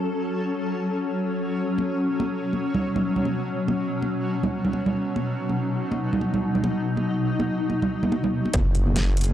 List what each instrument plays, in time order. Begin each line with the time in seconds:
Already playing: ambient pad F#3 C#4 A4
1.78 ambient pad B2, muted conga
2.20 muted conga
2.53 muted conga
2.74 low conga
2.96 muted conga, low conga
3.16 low conga
3.25 muted conga
3.68 muted conga
4.02 muted conga
4.43 muted conga, low conga
4.65 low conga
4.73 muted conga
4.86 low conga
5.16 ambient pad D#4, muted conga
5.49 muted conga
5.92 muted conga
6.13 low conga
6.21 muted conga
6.34 low conga
6.55 low conga
6.64 muted conga
6.97 muted conga
7.40 muted conga
7.70 muted conga
7.82 low conga
8.03 high conga, low conga
8.12 muted conga
8.23 high conga, low conga
8.46 muted conga
8.54 detuned saw bass F#1, ambient pad F#3 C#4 G#4, kick, closed hi-hat, impact, muted conga
8.75 closed hi-hat
8.87 high conga
8.96 snare, closed hi-hat, muted conga
9.17 closed hi-hat
9.21 closed hi-hat
9.24 closed hi-hat
9.29 muted conga, high conga